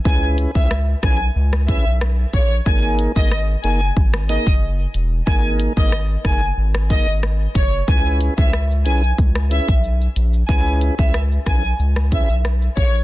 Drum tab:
HH |--x---x---x---x-|--x---x---x---x-|--x---x---x---x-|--x---x---x---x-|
SH |----------------|----------------|----------------|xxxxxxxxxxxxxxxx|
SD |----r-r--r--r---|----r----r------|----r-r--r--r---|----r----r------|
BD |o--o--o---o---o-|o--o----o--o----|o--o--o---o---o-|o--o----o--o----|

HH |--x---x---x---x-|
SH |xxxxxxxxxxxxxxxx|
SD |----r-r--r--r---|
BD |o--o--o---o---o-|